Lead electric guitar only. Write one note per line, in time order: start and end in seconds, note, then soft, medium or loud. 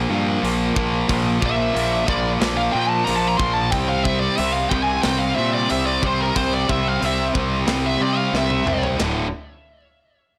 1.46 2.05 E5 medium
2.08 2.28 D5 medium
2.57 2.73 F5 medium
2.72 2.89 G5 medium
2.89 3.05 A5 medium
3.04 3.15 A#5 medium
3.16 3.27 A5 medium
3.27 3.38 A#5 medium
3.38 3.53 C6 loud
3.53 3.71 A5 medium
3.71 3.87 G5 medium
3.89 4.04 F5 medium
4.05 4.20 E5 medium
4.20 4.38 D5 medium
4.38 4.53 E5 medium
4.53 4.70 F5 medium
4.69 4.83 G5 medium
4.83 5.01 G#5 loud
5.03 5.19 G5 medium
5.19 5.35 F5 medium
5.35 5.52 E5 medium
5.54 5.70 D5 medium
5.71 5.86 E5 medium
5.86 6.02 D5 medium
6.07 6.21 C5 medium
6.22 6.36 A#4 medium
6.37 6.52 C5 medium
6.54 6.69 D5 medium
6.71 6.88 E5 medium
6.88 7.03 F5 medium
7.06 7.24 E5 medium
7.86 8.01 E5 medium
8.03 8.17 D5 medium
8.17 8.33 F5 medium
8.37 8.85 E5 medium